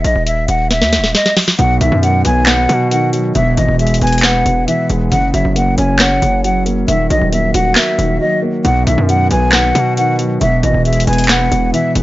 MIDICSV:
0, 0, Header, 1, 5, 480
1, 0, Start_track
1, 0, Key_signature, 5, "major"
1, 0, Tempo, 441176
1, 1728, Time_signature, 4, 2, 24, 8
1, 13086, End_track
2, 0, Start_track
2, 0, Title_t, "Flute"
2, 0, Program_c, 0, 73
2, 48, Note_on_c, 0, 75, 84
2, 258, Note_off_c, 0, 75, 0
2, 289, Note_on_c, 0, 76, 86
2, 499, Note_off_c, 0, 76, 0
2, 528, Note_on_c, 0, 78, 81
2, 738, Note_off_c, 0, 78, 0
2, 770, Note_on_c, 0, 76, 87
2, 1220, Note_off_c, 0, 76, 0
2, 1247, Note_on_c, 0, 75, 84
2, 1457, Note_off_c, 0, 75, 0
2, 1728, Note_on_c, 0, 78, 102
2, 1938, Note_off_c, 0, 78, 0
2, 1963, Note_on_c, 0, 76, 78
2, 2175, Note_off_c, 0, 76, 0
2, 2207, Note_on_c, 0, 78, 82
2, 2418, Note_off_c, 0, 78, 0
2, 2452, Note_on_c, 0, 80, 84
2, 2660, Note_off_c, 0, 80, 0
2, 2685, Note_on_c, 0, 78, 92
2, 3137, Note_off_c, 0, 78, 0
2, 3168, Note_on_c, 0, 78, 88
2, 3378, Note_off_c, 0, 78, 0
2, 3647, Note_on_c, 0, 76, 98
2, 3858, Note_off_c, 0, 76, 0
2, 3892, Note_on_c, 0, 75, 80
2, 4100, Note_off_c, 0, 75, 0
2, 4127, Note_on_c, 0, 76, 88
2, 4338, Note_off_c, 0, 76, 0
2, 4368, Note_on_c, 0, 80, 91
2, 4578, Note_off_c, 0, 80, 0
2, 4615, Note_on_c, 0, 78, 86
2, 5063, Note_off_c, 0, 78, 0
2, 5086, Note_on_c, 0, 76, 85
2, 5297, Note_off_c, 0, 76, 0
2, 5564, Note_on_c, 0, 78, 103
2, 5776, Note_off_c, 0, 78, 0
2, 5808, Note_on_c, 0, 76, 81
2, 6018, Note_off_c, 0, 76, 0
2, 6051, Note_on_c, 0, 78, 78
2, 6260, Note_off_c, 0, 78, 0
2, 6289, Note_on_c, 0, 80, 77
2, 6499, Note_off_c, 0, 80, 0
2, 6528, Note_on_c, 0, 78, 90
2, 6979, Note_off_c, 0, 78, 0
2, 7009, Note_on_c, 0, 78, 89
2, 7219, Note_off_c, 0, 78, 0
2, 7489, Note_on_c, 0, 76, 101
2, 7698, Note_off_c, 0, 76, 0
2, 7729, Note_on_c, 0, 75, 83
2, 7939, Note_off_c, 0, 75, 0
2, 7970, Note_on_c, 0, 76, 83
2, 8179, Note_off_c, 0, 76, 0
2, 8207, Note_on_c, 0, 78, 81
2, 8417, Note_off_c, 0, 78, 0
2, 8451, Note_on_c, 0, 76, 85
2, 8901, Note_off_c, 0, 76, 0
2, 8928, Note_on_c, 0, 75, 83
2, 9138, Note_off_c, 0, 75, 0
2, 9410, Note_on_c, 0, 78, 99
2, 9619, Note_off_c, 0, 78, 0
2, 9644, Note_on_c, 0, 76, 80
2, 9856, Note_off_c, 0, 76, 0
2, 9888, Note_on_c, 0, 78, 82
2, 10098, Note_off_c, 0, 78, 0
2, 10133, Note_on_c, 0, 80, 86
2, 10341, Note_off_c, 0, 80, 0
2, 10366, Note_on_c, 0, 78, 91
2, 10818, Note_off_c, 0, 78, 0
2, 10849, Note_on_c, 0, 78, 88
2, 11058, Note_off_c, 0, 78, 0
2, 11329, Note_on_c, 0, 76, 105
2, 11539, Note_off_c, 0, 76, 0
2, 11573, Note_on_c, 0, 75, 77
2, 11781, Note_off_c, 0, 75, 0
2, 11806, Note_on_c, 0, 76, 87
2, 12017, Note_off_c, 0, 76, 0
2, 12048, Note_on_c, 0, 80, 94
2, 12258, Note_off_c, 0, 80, 0
2, 12291, Note_on_c, 0, 78, 85
2, 12740, Note_off_c, 0, 78, 0
2, 12766, Note_on_c, 0, 76, 87
2, 12977, Note_off_c, 0, 76, 0
2, 13086, End_track
3, 0, Start_track
3, 0, Title_t, "Grand piano"
3, 0, Program_c, 1, 0
3, 1726, Note_on_c, 1, 47, 91
3, 1936, Control_c, 1, 64, 127
3, 1967, Note_on_c, 1, 51, 78
3, 2207, Note_on_c, 1, 54, 80
3, 2445, Note_on_c, 1, 59, 96
3, 2687, Note_on_c, 1, 71, 79
3, 2909, Note_off_c, 1, 47, 0
3, 2926, Note_on_c, 1, 47, 74
3, 3152, Note_off_c, 1, 51, 0
3, 3168, Note_on_c, 1, 51, 81
3, 3387, Note_off_c, 1, 54, 0
3, 3403, Note_on_c, 1, 54, 78
3, 3631, Note_off_c, 1, 47, 0
3, 3645, Note_off_c, 1, 54, 0
3, 3646, Note_off_c, 1, 59, 0
3, 3648, Note_off_c, 1, 51, 0
3, 3648, Note_off_c, 1, 71, 0
3, 3648, Note_on_c, 1, 47, 94
3, 3663, Control_c, 1, 64, 0
3, 3878, Control_c, 1, 64, 127
3, 3890, Note_on_c, 1, 52, 81
3, 4130, Note_on_c, 1, 56, 79
3, 4367, Note_on_c, 1, 59, 98
3, 4610, Note_on_c, 1, 71, 88
3, 4827, Note_off_c, 1, 47, 0
3, 4843, Note_on_c, 1, 47, 66
3, 5067, Note_off_c, 1, 52, 0
3, 5084, Note_on_c, 1, 52, 93
3, 5309, Note_off_c, 1, 56, 0
3, 5326, Note_on_c, 1, 56, 77
3, 5566, Note_off_c, 1, 47, 0
3, 5566, Note_off_c, 1, 52, 0
3, 5567, Note_off_c, 1, 56, 0
3, 5567, Note_off_c, 1, 59, 0
3, 5568, Note_on_c, 1, 49, 88
3, 5569, Note_off_c, 1, 71, 0
3, 5583, Control_c, 1, 64, 0
3, 5782, Control_c, 1, 64, 127
3, 5805, Note_on_c, 1, 54, 80
3, 6044, Note_on_c, 1, 58, 81
3, 6286, Note_on_c, 1, 61, 100
3, 6526, Note_on_c, 1, 73, 80
3, 6750, Note_off_c, 1, 49, 0
3, 6767, Note_on_c, 1, 49, 73
3, 6994, Note_off_c, 1, 54, 0
3, 7010, Note_on_c, 1, 54, 89
3, 7227, Note_off_c, 1, 58, 0
3, 7243, Note_on_c, 1, 58, 81
3, 7486, Note_off_c, 1, 58, 0
3, 7487, Note_off_c, 1, 49, 0
3, 7487, Note_off_c, 1, 61, 0
3, 7487, Note_off_c, 1, 73, 0
3, 7489, Note_off_c, 1, 54, 0
3, 7489, Note_on_c, 1, 51, 90
3, 7500, Control_c, 1, 64, 0
3, 7695, Control_c, 1, 64, 127
3, 7724, Note_on_c, 1, 54, 80
3, 7966, Note_on_c, 1, 58, 71
3, 8209, Note_on_c, 1, 66, 101
3, 8444, Note_on_c, 1, 70, 88
3, 8670, Note_off_c, 1, 51, 0
3, 8686, Note_on_c, 1, 51, 72
3, 8916, Note_off_c, 1, 54, 0
3, 8932, Note_on_c, 1, 54, 85
3, 9149, Note_off_c, 1, 58, 0
3, 9165, Note_on_c, 1, 58, 84
3, 9406, Note_off_c, 1, 70, 0
3, 9407, Note_off_c, 1, 51, 0
3, 9407, Note_off_c, 1, 58, 0
3, 9408, Note_off_c, 1, 66, 0
3, 9409, Note_on_c, 1, 47, 92
3, 9410, Note_off_c, 1, 54, 0
3, 9421, Control_c, 1, 64, 0
3, 9613, Control_c, 1, 64, 127
3, 9650, Note_on_c, 1, 51, 80
3, 9887, Note_on_c, 1, 54, 77
3, 10126, Note_on_c, 1, 59, 94
3, 10366, Note_on_c, 1, 71, 82
3, 10589, Note_off_c, 1, 47, 0
3, 10605, Note_on_c, 1, 47, 70
3, 10833, Note_off_c, 1, 51, 0
3, 10849, Note_on_c, 1, 51, 82
3, 11068, Note_off_c, 1, 54, 0
3, 11084, Note_on_c, 1, 54, 75
3, 11312, Note_off_c, 1, 47, 0
3, 11326, Note_off_c, 1, 54, 0
3, 11327, Note_off_c, 1, 59, 0
3, 11327, Note_off_c, 1, 71, 0
3, 11328, Note_off_c, 1, 51, 0
3, 11328, Note_on_c, 1, 47, 91
3, 11340, Control_c, 1, 64, 0
3, 11512, Control_c, 1, 64, 127
3, 11573, Note_on_c, 1, 52, 82
3, 11812, Note_on_c, 1, 56, 81
3, 12050, Note_on_c, 1, 59, 97
3, 12290, Note_on_c, 1, 71, 89
3, 12508, Note_off_c, 1, 47, 0
3, 12524, Note_on_c, 1, 47, 62
3, 12749, Note_off_c, 1, 52, 0
3, 12765, Note_on_c, 1, 52, 92
3, 12992, Note_off_c, 1, 56, 0
3, 13008, Note_on_c, 1, 56, 75
3, 13086, Note_off_c, 1, 47, 0
3, 13086, Note_off_c, 1, 52, 0
3, 13086, Note_off_c, 1, 56, 0
3, 13086, Note_off_c, 1, 59, 0
3, 13086, Note_off_c, 1, 71, 0
3, 13086, End_track
4, 0, Start_track
4, 0, Title_t, "808-style bass"
4, 0, Program_c, 2, 38
4, 47, Note_on_c, 2, 34, 103
4, 163, Note_off_c, 2, 34, 0
4, 168, Note_on_c, 2, 27, 99
4, 514, Note_off_c, 2, 27, 0
4, 527, Note_on_c, 2, 27, 108
4, 887, Note_on_c, 2, 39, 96
4, 903, Note_off_c, 2, 27, 0
4, 1068, Note_on_c, 2, 27, 101
4, 1084, Note_off_c, 2, 39, 0
4, 1239, Note_off_c, 2, 27, 0
4, 1728, Note_on_c, 2, 35, 108
4, 1958, Note_off_c, 2, 35, 0
4, 1967, Note_on_c, 2, 35, 101
4, 2083, Note_off_c, 2, 35, 0
4, 2088, Note_on_c, 2, 42, 101
4, 2433, Note_off_c, 2, 42, 0
4, 2447, Note_on_c, 2, 35, 105
4, 2908, Note_off_c, 2, 35, 0
4, 2927, Note_on_c, 2, 47, 107
4, 3619, Note_off_c, 2, 47, 0
4, 3648, Note_on_c, 2, 28, 110
4, 3878, Note_off_c, 2, 28, 0
4, 3888, Note_on_c, 2, 32, 104
4, 4001, Note_off_c, 2, 32, 0
4, 4007, Note_on_c, 2, 28, 103
4, 4353, Note_off_c, 2, 28, 0
4, 4368, Note_on_c, 2, 28, 103
4, 4829, Note_off_c, 2, 28, 0
4, 4848, Note_on_c, 2, 28, 102
4, 5078, Note_off_c, 2, 28, 0
4, 5328, Note_on_c, 2, 28, 104
4, 5558, Note_off_c, 2, 28, 0
4, 5568, Note_on_c, 2, 30, 110
4, 5798, Note_off_c, 2, 30, 0
4, 5807, Note_on_c, 2, 30, 105
4, 5922, Note_off_c, 2, 30, 0
4, 5927, Note_on_c, 2, 30, 101
4, 6273, Note_off_c, 2, 30, 0
4, 6287, Note_on_c, 2, 30, 106
4, 6748, Note_off_c, 2, 30, 0
4, 6768, Note_on_c, 2, 30, 103
4, 7459, Note_off_c, 2, 30, 0
4, 7488, Note_on_c, 2, 27, 111
4, 7718, Note_off_c, 2, 27, 0
4, 7728, Note_on_c, 2, 34, 106
4, 7843, Note_off_c, 2, 34, 0
4, 7849, Note_on_c, 2, 27, 103
4, 8194, Note_off_c, 2, 27, 0
4, 8209, Note_on_c, 2, 27, 109
4, 8439, Note_off_c, 2, 27, 0
4, 8688, Note_on_c, 2, 27, 107
4, 8918, Note_off_c, 2, 27, 0
4, 9408, Note_on_c, 2, 35, 116
4, 9638, Note_off_c, 2, 35, 0
4, 9648, Note_on_c, 2, 35, 102
4, 9763, Note_off_c, 2, 35, 0
4, 9768, Note_on_c, 2, 42, 101
4, 10114, Note_off_c, 2, 42, 0
4, 10129, Note_on_c, 2, 35, 109
4, 10589, Note_off_c, 2, 35, 0
4, 10608, Note_on_c, 2, 47, 102
4, 11299, Note_off_c, 2, 47, 0
4, 11328, Note_on_c, 2, 28, 112
4, 11558, Note_off_c, 2, 28, 0
4, 11568, Note_on_c, 2, 32, 105
4, 11683, Note_off_c, 2, 32, 0
4, 11687, Note_on_c, 2, 28, 100
4, 12033, Note_off_c, 2, 28, 0
4, 12047, Note_on_c, 2, 28, 106
4, 12508, Note_off_c, 2, 28, 0
4, 12527, Note_on_c, 2, 28, 106
4, 12758, Note_off_c, 2, 28, 0
4, 13007, Note_on_c, 2, 28, 104
4, 13086, Note_off_c, 2, 28, 0
4, 13086, End_track
5, 0, Start_track
5, 0, Title_t, "Drums"
5, 49, Note_on_c, 9, 42, 72
5, 158, Note_off_c, 9, 42, 0
5, 289, Note_on_c, 9, 42, 80
5, 398, Note_off_c, 9, 42, 0
5, 526, Note_on_c, 9, 42, 82
5, 635, Note_off_c, 9, 42, 0
5, 768, Note_on_c, 9, 38, 58
5, 769, Note_on_c, 9, 42, 70
5, 877, Note_off_c, 9, 38, 0
5, 878, Note_off_c, 9, 42, 0
5, 888, Note_on_c, 9, 38, 59
5, 997, Note_off_c, 9, 38, 0
5, 1008, Note_on_c, 9, 38, 71
5, 1010, Note_on_c, 9, 42, 80
5, 1117, Note_off_c, 9, 38, 0
5, 1119, Note_off_c, 9, 42, 0
5, 1128, Note_on_c, 9, 38, 66
5, 1237, Note_off_c, 9, 38, 0
5, 1248, Note_on_c, 9, 38, 86
5, 1251, Note_on_c, 9, 42, 86
5, 1357, Note_off_c, 9, 38, 0
5, 1360, Note_off_c, 9, 42, 0
5, 1368, Note_on_c, 9, 38, 79
5, 1477, Note_off_c, 9, 38, 0
5, 1486, Note_on_c, 9, 46, 80
5, 1487, Note_on_c, 9, 38, 104
5, 1595, Note_off_c, 9, 46, 0
5, 1596, Note_off_c, 9, 38, 0
5, 1608, Note_on_c, 9, 38, 90
5, 1717, Note_off_c, 9, 38, 0
5, 1727, Note_on_c, 9, 42, 81
5, 1836, Note_off_c, 9, 42, 0
5, 1968, Note_on_c, 9, 42, 71
5, 2077, Note_off_c, 9, 42, 0
5, 2209, Note_on_c, 9, 42, 77
5, 2318, Note_off_c, 9, 42, 0
5, 2446, Note_on_c, 9, 42, 82
5, 2555, Note_off_c, 9, 42, 0
5, 2680, Note_on_c, 9, 39, 97
5, 2687, Note_on_c, 9, 38, 115
5, 2688, Note_on_c, 9, 42, 71
5, 2789, Note_off_c, 9, 39, 0
5, 2796, Note_off_c, 9, 38, 0
5, 2797, Note_off_c, 9, 42, 0
5, 2930, Note_on_c, 9, 42, 78
5, 3039, Note_off_c, 9, 42, 0
5, 3171, Note_on_c, 9, 42, 84
5, 3280, Note_off_c, 9, 42, 0
5, 3406, Note_on_c, 9, 42, 75
5, 3515, Note_off_c, 9, 42, 0
5, 3646, Note_on_c, 9, 42, 83
5, 3755, Note_off_c, 9, 42, 0
5, 3888, Note_on_c, 9, 42, 73
5, 3997, Note_off_c, 9, 42, 0
5, 4127, Note_on_c, 9, 42, 50
5, 4207, Note_off_c, 9, 42, 0
5, 4207, Note_on_c, 9, 42, 68
5, 4287, Note_off_c, 9, 42, 0
5, 4287, Note_on_c, 9, 42, 80
5, 4368, Note_off_c, 9, 42, 0
5, 4368, Note_on_c, 9, 42, 51
5, 4427, Note_off_c, 9, 42, 0
5, 4427, Note_on_c, 9, 42, 61
5, 4488, Note_off_c, 9, 42, 0
5, 4488, Note_on_c, 9, 42, 68
5, 4547, Note_off_c, 9, 42, 0
5, 4547, Note_on_c, 9, 42, 78
5, 4600, Note_on_c, 9, 39, 98
5, 4608, Note_on_c, 9, 38, 120
5, 4656, Note_off_c, 9, 42, 0
5, 4709, Note_off_c, 9, 39, 0
5, 4716, Note_off_c, 9, 38, 0
5, 4850, Note_on_c, 9, 42, 82
5, 4959, Note_off_c, 9, 42, 0
5, 5091, Note_on_c, 9, 42, 82
5, 5200, Note_off_c, 9, 42, 0
5, 5327, Note_on_c, 9, 42, 76
5, 5435, Note_off_c, 9, 42, 0
5, 5567, Note_on_c, 9, 42, 84
5, 5676, Note_off_c, 9, 42, 0
5, 5809, Note_on_c, 9, 42, 73
5, 5918, Note_off_c, 9, 42, 0
5, 6050, Note_on_c, 9, 42, 80
5, 6158, Note_off_c, 9, 42, 0
5, 6286, Note_on_c, 9, 42, 84
5, 6395, Note_off_c, 9, 42, 0
5, 6520, Note_on_c, 9, 39, 95
5, 6527, Note_on_c, 9, 38, 118
5, 6528, Note_on_c, 9, 42, 70
5, 6629, Note_off_c, 9, 39, 0
5, 6636, Note_off_c, 9, 38, 0
5, 6637, Note_off_c, 9, 42, 0
5, 6770, Note_on_c, 9, 42, 80
5, 6879, Note_off_c, 9, 42, 0
5, 7011, Note_on_c, 9, 42, 83
5, 7120, Note_off_c, 9, 42, 0
5, 7247, Note_on_c, 9, 42, 76
5, 7356, Note_off_c, 9, 42, 0
5, 7488, Note_on_c, 9, 42, 83
5, 7597, Note_off_c, 9, 42, 0
5, 7730, Note_on_c, 9, 42, 73
5, 7838, Note_off_c, 9, 42, 0
5, 7970, Note_on_c, 9, 42, 79
5, 8079, Note_off_c, 9, 42, 0
5, 8207, Note_on_c, 9, 42, 84
5, 8316, Note_off_c, 9, 42, 0
5, 8440, Note_on_c, 9, 39, 94
5, 8448, Note_on_c, 9, 38, 122
5, 8449, Note_on_c, 9, 42, 71
5, 8549, Note_off_c, 9, 39, 0
5, 8556, Note_off_c, 9, 38, 0
5, 8557, Note_off_c, 9, 42, 0
5, 8691, Note_on_c, 9, 42, 79
5, 8799, Note_off_c, 9, 42, 0
5, 9408, Note_on_c, 9, 42, 84
5, 9517, Note_off_c, 9, 42, 0
5, 9650, Note_on_c, 9, 42, 73
5, 9759, Note_off_c, 9, 42, 0
5, 9890, Note_on_c, 9, 42, 78
5, 9998, Note_off_c, 9, 42, 0
5, 10126, Note_on_c, 9, 42, 81
5, 10235, Note_off_c, 9, 42, 0
5, 10360, Note_on_c, 9, 39, 94
5, 10367, Note_on_c, 9, 38, 122
5, 10368, Note_on_c, 9, 42, 70
5, 10469, Note_off_c, 9, 39, 0
5, 10476, Note_off_c, 9, 38, 0
5, 10477, Note_off_c, 9, 42, 0
5, 10610, Note_on_c, 9, 42, 81
5, 10719, Note_off_c, 9, 42, 0
5, 10851, Note_on_c, 9, 42, 83
5, 10959, Note_off_c, 9, 42, 0
5, 11086, Note_on_c, 9, 42, 78
5, 11195, Note_off_c, 9, 42, 0
5, 11327, Note_on_c, 9, 42, 84
5, 11436, Note_off_c, 9, 42, 0
5, 11569, Note_on_c, 9, 42, 75
5, 11677, Note_off_c, 9, 42, 0
5, 11808, Note_on_c, 9, 42, 49
5, 11888, Note_off_c, 9, 42, 0
5, 11888, Note_on_c, 9, 42, 66
5, 11968, Note_off_c, 9, 42, 0
5, 11968, Note_on_c, 9, 42, 80
5, 12048, Note_off_c, 9, 42, 0
5, 12048, Note_on_c, 9, 42, 51
5, 12108, Note_off_c, 9, 42, 0
5, 12108, Note_on_c, 9, 42, 62
5, 12168, Note_off_c, 9, 42, 0
5, 12168, Note_on_c, 9, 42, 71
5, 12228, Note_off_c, 9, 42, 0
5, 12228, Note_on_c, 9, 42, 78
5, 12280, Note_on_c, 9, 39, 98
5, 12288, Note_on_c, 9, 38, 119
5, 12289, Note_off_c, 9, 42, 0
5, 12289, Note_on_c, 9, 42, 73
5, 12389, Note_off_c, 9, 39, 0
5, 12396, Note_off_c, 9, 38, 0
5, 12397, Note_off_c, 9, 42, 0
5, 12531, Note_on_c, 9, 42, 83
5, 12639, Note_off_c, 9, 42, 0
5, 12772, Note_on_c, 9, 42, 88
5, 12881, Note_off_c, 9, 42, 0
5, 13007, Note_on_c, 9, 42, 79
5, 13086, Note_off_c, 9, 42, 0
5, 13086, End_track
0, 0, End_of_file